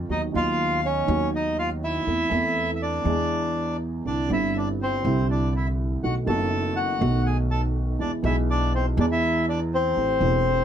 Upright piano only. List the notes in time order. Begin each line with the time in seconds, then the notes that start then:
0.09 D#2 D#3 F#3 B3 F#4
0.32 D#2 D#3 F#3 B3
0.36 D#4
1.08 D#2 D#3 F#3 B3 F#4
2.07 E2 E3 A3 C4 A4
2.30 E2 E3 A3 C4 A4
3.04 E2 E3 G#3 B3
3.08 G#4
4.05 C2 C3 D3 G3 C4 E4
4.28 G1 G2 D3 G3 C4
4.32 E4
5.02 C2 C3 D3 G3 C4 E4
6.03 B1 B2 D#3 A3 B3 F#4
6.25 F#1 F#2 D#3 A3 B3 F#4
6.99 B1 B2 D#3 A3 B3 F#4
7.99 E2 E3 G#3 B3 G#4
8.22 B1 B2 E3 G#3 B3 G#4
8.97 E2 E3 G#3 B3
9.01 G#4
9.97 A1 A2 E3 A3 C4 G4
10.20 E1 E2 E3 A3 C4
10.24 G4